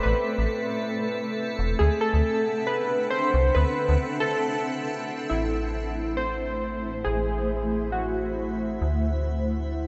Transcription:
Already playing: ambient pad A3 C4 A4 E5
0.03 fm bass A1, synth keys B4
0.38 fm bass A1
1.59 fm bass E1
1.79 fm bass D2, ambient pad C4 D4 E5 F#5, synth keys G#4
2.01 synth keys A4
2.14 fm bass D2
2.67 synth keys B4
3.10 synth keys C5
3.34 fm bass C2
3.55 fm bass D2, synth keys B4
3.89 fm bass D2
4.20 synth keys A4
5.30 fm bass A1, ambient pad A3 E4 C5 E5, synth keys E4
6.17 synth keys C5
7.04 fm bass A1, synth keys G#4
7.92 synth keys F#4
8.81 fm bass D2, ambient pad D4 C5 F#5

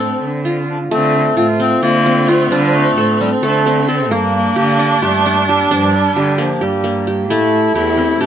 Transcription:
Already playing: cello A2, viola C4, qanun D4 A4, clarinet A4
0.00 qanun C4
0.22 cello D3
0.45 qanun F4
0.69 clarinet D4
0.91 cello D3, qanun A3, clarinet C4, viola C4
1.37 cello A2, clarinet C4, qanun F4
1.60 qanun C4, clarinet C4
1.82 cello D3, clarinet A#3, qanun F4
2.06 qanun C4
2.28 clarinet A3, qanun F4
2.51 cello D3, clarinet G3, qanun D4
2.75 clarinet A3
2.97 cello A2, qanun A4
3.20 clarinet G3, qanun C4
3.43 cello D3, clarinet A3, qanun A4
3.66 qanun C4
3.88 clarinet C4, qanun A4
4.11 cello G2, qanun A#3, clarinet A#3, viola D4
4.35 clarinet A#3
4.56 cello D3, clarinet A#3, qanun G4
4.79 qanun D4
5.02 cello G2, clarinet A3, qanun G4
5.26 qanun D4
5.48 clarinet G3, qanun G4
5.71 cello G2, clarinet F3, qanun D4
5.95 clarinet G3
6.16 cello D3, qanun G4
6.38 clarinet F3, qanun A#3
6.61 cello G2, clarinet G3, qanun G4
6.84 qanun A#3
7.07 qanun G4
7.29 cello A2, qanun A3, clarinet E4, viola E4
7.75 cello E2, clarinet E4, qanun G4
7.97 qanun C4
8.21 cello A2, clarinet D4, qanun G4

